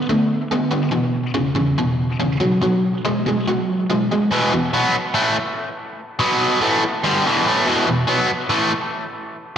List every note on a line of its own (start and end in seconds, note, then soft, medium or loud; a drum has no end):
0.09 0.47 D3 medium
0.09 0.47 A3 medium
0.52 0.71 D3 medium
0.52 0.70 B3 medium
0.71 0.91 D3 medium
0.71 0.91 B3 medium
0.92 1.31 E2 medium
0.92 1.31 B2 medium
1.34 1.54 E2 medium
1.34 1.54 C#3 medium
1.55 1.75 E2 medium
1.55 1.76 C#3 medium
1.78 2.16 E2 medium
1.78 2.17 B2 medium
2.20 2.39 E2 medium
2.20 2.39 C#3 medium
2.40 2.60 B2 medium
2.40 2.60 F#3 medium
2.62 3.00 B2 medium
2.62 3.01 F#3 medium
3.05 3.24 B2 medium
3.05 3.24 G#3 medium
3.26 3.45 B2 medium
3.26 3.46 G#3 medium
3.48 3.86 B2 medium
3.48 3.86 F#3 medium
3.90 4.09 B2 medium
3.90 4.09 G#3 medium
4.12 4.30 B2 medium
4.12 4.30 G#3 medium
4.31 4.52 E2 medium
4.31 4.52 B2 loud
4.31 4.53 E3 loud
4.53 4.70 E2 medium
4.53 4.70 B2 medium
4.74 4.94 B2 medium
4.74 4.94 F#3 medium
4.74 4.95 B3 loud
4.94 muted overdriven electric guitar stroke medium
5.14 5.35 A2 medium
5.14 5.36 E3 medium
5.14 5.36 A3 loud
6.19 6.61 B2 medium
6.19 6.61 F#3 medium
6.19 6.61 B3 medium
6.61 6.82 A2 loud
6.61 6.82 E3 loud
6.61 6.82 A3 loud
6.84 muted overdriven electric guitar stroke medium
7.04 7.25 G2 medium
7.04 7.25 D3 loud
7.04 7.25 G3 loud
7.26 7.46 E2 loud
7.26 7.46 B2 loud
7.26 7.45 E3 medium
7.46 7.66 A2 medium
7.46 7.66 E3 loud
7.46 7.67 A3 loud
7.65 7.86 E2 medium
7.65 7.86 B2 loud
7.65 7.87 E3 loud
7.87 8.04 E2 medium
7.87 8.05 B2 medium
8.07 8.29 B2 medium
8.07 8.29 F#3 loud
8.07 8.29 B3 loud
8.28 muted overdriven electric guitar stroke medium
8.49 8.71 A2 medium
8.49 8.71 E3 loud
8.49 8.71 A3 medium